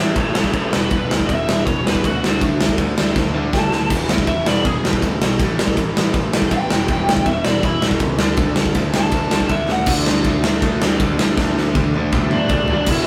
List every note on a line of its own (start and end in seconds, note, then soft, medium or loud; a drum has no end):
0.00 0.14 A1 medium
0.00 0.13 A2 medium
0.00 0.34 A2 medium
0.00 0.14 E3 loud
0.00 0.35 E3 medium
0.00 0.15 A3 loud
0.00 0.34 A3 loud
0.00 0.15 C#5 medium
0.00 0.15 E5 medium
0.15 0.32 A1 medium
0.15 0.32 A2 medium
0.15 0.33 E3 medium
0.15 0.32 A4 medium
0.15 0.33 C#5 medium
0.15 kick loud
0.15 ride medium
0.33 0.52 A2 medium
0.33 0.52 E3 loud
0.33 0.53 A3 loud
0.33 0.52 A4 medium
0.33 0.53 C#5 medium
0.33 snare loud
0.37 0.52 A1 medium
0.37 0.53 A2 medium
0.44 kick medium
0.53 0.70 A1 medium
0.53 0.70 A2 medium
0.53 0.71 E3 medium
0.53 0.72 A4 medium
0.53 0.72 C#5 medium
0.53 kick loud
0.53 ride medium
0.57 0.73 A3 loud
0.71 0.89 E1 medium
0.71 0.90 E2 medium
0.71 0.90 B2 loud
0.71 0.90 E3 medium
0.71 1.09 B4 loud
0.71 snare loud
0.91 1.07 E1 medium
0.91 1.09 E2 loud
0.91 1.09 B2 loud
0.91 1.09 E3 loud
0.91 kick loud
0.91 ride medium
1.10 1.26 D2 medium
1.10 1.27 E2 medium
1.10 1.28 B2 medium
1.10 snare loud
1.20 kick medium
1.27 1.45 E1 medium
1.27 1.45 E2 medium
1.27 1.46 B2 medium
1.27 1.64 E5 loud
1.27 kick medium
1.27 ride medium
1.46 1.64 E1 medium
1.46 1.63 E2 medium
1.46 1.63 B2 medium
1.46 1.65 E3 medium
1.46 snare loud
1.64 1.83 E1 medium
1.64 1.82 E2 medium
1.64 1.82 B2 loud
1.64 1.86 C#5 medium
1.64 kick loud
1.64 ride medium
1.70 1.84 E3 loud
1.84 2.01 E2 medium
1.84 2.02 B2 loud
1.84 2.02 E3 loud
1.84 2.04 B4 medium
1.84 snare loud
1.89 2.03 E1 medium
1.95 kick medium
2.03 2.20 D2 medium
2.03 2.20 E2 medium
2.03 2.20 B2 medium
2.03 2.40 F#4 loud
2.03 kick loud
2.03 ride medium
2.21 2.39 D3 medium
2.21 2.40 A3 loud
2.21 2.40 D4 medium
2.21 snare loud
2.25 2.40 D2 medium
2.40 2.58 D2 loud
2.40 2.57 D3 loud
2.40 2.57 A3 medium
2.40 2.59 D4 loud
2.40 kick loud
2.40 ride medium
2.59 2.76 D2 medium
2.59 2.76 D3 medium
2.59 2.76 A3 medium
2.59 snare loud
2.69 kick medium
2.78 2.94 D2 medium
2.78 2.95 D3 medium
2.78 2.95 A3 medium
2.78 kick loud
2.78 ride medium
2.97 3.14 D2 medium
2.97 3.15 D3 medium
2.97 3.14 A3 medium
2.97 3.15 D4 medium
2.97 snare loud
3.15 3.32 D2 medium
3.15 3.32 D3 medium
3.15 3.32 A3 medium
3.15 kick loud
3.15 snare medium
3.20 3.35 D4 loud
3.33 3.50 D2 loud
3.33 3.51 D3 medium
3.33 3.52 A3 loud
3.33 3.52 D4 loud
3.38 3.73 D3 medium
3.52 3.69 D2 loud
3.52 3.70 D3 medium
3.52 3.70 A3 medium
3.52 3.90 A5 loud
3.52 kick loud
3.52 snare loud
3.72 3.88 D2 medium
3.72 3.89 D3 medium
3.72 3.89 A3 medium
3.72 snare medium
3.90 4.06 E1 medium
3.90 4.07 E2 medium
3.90 4.08 B2 medium
3.90 4.09 E3 loud
3.90 kick loud
3.90 crash loud
4.08 4.25 D2 medium
4.08 4.26 E2 medium
4.08 4.26 B2 medium
4.08 snare loud
4.18 kick medium
4.27 4.44 E1 medium
4.27 4.45 E2 medium
4.27 4.45 B2 medium
4.27 4.46 E5 loud
4.27 kick loud
4.27 ride medium
4.46 4.63 E1 medium
4.46 4.64 E2 medium
4.46 4.64 B2 medium
4.46 4.65 E3 loud
4.46 4.66 D5 medium
4.46 snare loud
4.65 4.81 E1 medium
4.65 4.82 E2 medium
4.65 4.82 B2 medium
4.65 4.84 G#4 medium
4.65 kick loud
4.65 ride medium
4.83 5.00 E1 medium
4.83 5.01 E2 medium
4.83 5.02 B2 medium
4.83 5.02 E3 loud
4.83 snare loud
4.93 kick medium
5.02 5.18 D2 medium
5.02 5.20 E2 medium
5.02 5.20 B2 medium
5.02 5.42 E3 medium
5.02 kick loud
5.02 ride medium
5.22 5.38 B1 medium
5.22 5.39 E2 medium
5.22 5.39 B2 medium
5.22 snare loud
5.39 5.56 A1 medium
5.39 5.58 A2 medium
5.39 5.58 E3 loud
5.39 5.58 A3 loud
5.39 kick loud
5.39 ride medium
5.59 5.75 A1 medium
5.59 5.76 A2 medium
5.59 5.76 E3 medium
5.59 snare loud
5.68 kick medium
5.77 5.94 A1 medium
5.77 5.94 A2 medium
5.77 5.94 E3 medium
5.77 kick loud
5.77 ride medium
5.95 6.12 A1 medium
5.95 6.13 A2 medium
5.95 6.13 E3 medium
5.95 6.14 A3 medium
5.95 snare loud
6.14 6.30 A1 loud
6.14 6.31 A2 medium
6.14 6.32 E3 medium
6.14 kick loud
6.14 ride medium
6.33 6.50 A1 loud
6.33 6.51 A2 medium
6.33 6.52 E3 medium
6.33 6.52 A3 loud
6.33 snare loud
6.42 kick medium
6.51 6.68 A1 loud
6.51 6.69 A2 medium
6.51 6.70 E3 medium
6.51 7.25 G5 loud
6.51 kick loud
6.51 ride medium
6.55 6.72 A3 medium
6.70 6.87 E1 medium
6.70 6.87 E2 medium
6.70 6.88 B2 medium
6.70 6.88 E3 loud
6.70 snare loud
6.88 7.05 E1 loud
6.88 7.07 E2 medium
6.88 7.07 B2 loud
6.88 7.07 E3 loud
6.88 kick loud
6.88 ride medium
7.07 7.24 D2 medium
7.07 7.25 E2 medium
7.07 7.25 B2 medium
7.07 snare loud
7.17 kick medium
7.26 7.42 E1 medium
7.26 7.43 E2 medium
7.26 7.44 B2 loud
7.26 7.44 E5 medium
7.26 kick loud
7.26 ride medium
7.44 7.61 E1 medium
7.44 7.63 E2 medium
7.44 7.63 B2 medium
7.44 7.64 E3 medium
7.44 7.63 D5 medium
7.44 snare loud
7.63 7.80 E1 medium
7.63 7.81 E2 medium
7.63 7.82 B2 medium
7.63 7.81 E3 medium
7.63 7.83 E4 loud
7.63 kick loud
7.63 ride medium
7.81 7.98 E1 medium
7.81 8.00 E2 medium
7.81 8.00 B2 loud
7.81 8.02 E3 loud
7.81 snare loud
7.91 kick medium
8.00 8.18 C#2 loud
8.00 8.19 E2 medium
8.00 8.19 B2 medium
8.00 kick loud
8.00 ride medium
8.18 8.35 D2 medium
8.18 8.37 D3 medium
8.18 8.37 A3 loud
8.18 8.37 D4 loud
8.18 snare loud
8.37 8.54 D2 loud
8.37 8.56 D3 medium
8.37 8.56 A3 loud
8.37 8.57 D4 loud
8.37 kick loud
8.37 ride medium
8.56 8.73 D2 medium
8.56 8.73 D3 medium
8.56 8.74 A3 medium
8.56 snare loud
8.66 kick medium
8.74 8.92 D2 loud
8.74 8.92 D3 medium
8.74 8.92 A3 medium
8.74 kick loud
8.74 ride medium
8.93 9.11 D2 medium
8.93 9.09 D3 medium
8.93 9.10 A3 loud
8.93 9.12 D4 loud
8.93 9.50 A5 loud
8.93 snare loud
9.10 9.29 D2 medium
9.10 9.29 D3 medium
9.10 9.29 A3 loud
9.10 kick loud
9.10 ride medium
9.15 9.30 D4 loud
9.30 9.48 D2 medium
9.30 9.49 D3 medium
9.30 9.49 A3 medium
9.30 9.49 D4 loud
9.30 snare loud
9.40 kick medium
9.49 9.66 D2 loud
9.49 9.68 D3 medium
9.49 9.68 A3 medium
9.49 9.69 E5 medium
9.49 kick loud
9.49 ride medium
9.68 9.85 D2 medium
9.68 9.86 D3 medium
9.68 9.87 A3 medium
9.68 9.89 F#5 loud
9.68 snare medium
9.86 10.06 D2 loud
9.86 10.24 D3 loud
9.86 10.25 A3 loud
9.86 10.26 D4 loud
9.86 kick loud
9.86 crash loud
10.06 10.25 D2 medium
10.06 snare loud
10.24 10.62 D2 medium
10.24 10.42 D3 medium
10.24 10.43 A3 medium
10.24 10.43 D4 loud
10.24 kick loud
10.24 ride medium
10.42 10.60 D3 medium
10.42 10.61 A3 medium
10.42 10.61 D4 medium
10.42 snare loud
10.46 11.37 D3 medium
10.61 10.81 D2 loud
10.61 10.97 D3 loud
10.61 10.98 A3 loud
10.61 10.98 D4 loud
10.61 kick loud
10.61 ride medium
10.82 11.00 D2 loud
10.82 snare loud
10.98 11.19 D2 medium
10.98 11.17 D3 medium
10.98 11.18 A3 medium
10.98 11.18 D4 medium
10.98 kick loud
10.98 ride medium
11.18 11.36 D2 medium
11.18 11.37 D3 medium
11.18 11.38 A3 medium
11.18 11.37 D4 loud
11.18 snare loud
11.37 11.56 D2 medium
11.37 11.74 D3 loud
11.37 11.74 A3 loud
11.37 11.75 D4 loud
11.37 kick loud
11.37 snare medium
11.58 11.75 D2 loud
11.58 snare medium
11.75 11.94 D2 medium
11.75 11.94 D3 medium
11.75 11.94 A3 medium
11.75 11.95 D4 medium
11.75 kick loud
11.75 high tom medium
11.94 12.12 D2 medium
11.94 12.11 D3 medium
11.94 12.11 A3 medium
11.94 12.12 D4 medium
11.94 high tom medium
12.12 12.30 D2 loud
12.12 12.49 D3 loud
12.12 12.49 A3 loud
12.12 12.50 D4 loud
12.12 kick loud
12.12 mid tom loud
12.30 12.49 A2 medium
12.30 12.67 D4 medium
12.30 mid tom medium
12.36 12.71 D5 loud
12.49 12.68 D2 medium
12.49 12.68 D3 medium
12.49 12.68 A3 medium
12.49 12.69 D4 loud
12.49 kick loud
12.49 floor tom loud
12.68 12.87 A1 medium
12.68 12.86 D3 medium
12.68 12.87 A3 medium
12.68 12.87 D4 medium
12.68 floor tom medium
12.73 12.90 D5 medium
12.86 13.05 E1 loud
12.86 13.07 E2 loud
12.86 13.07 B2 loud
12.86 13.07 E3 loud
12.86 13.05 E4 medium
12.86 13.07 E5 loud
12.86 kick loud
12.86 crash loud
12.86 crash medium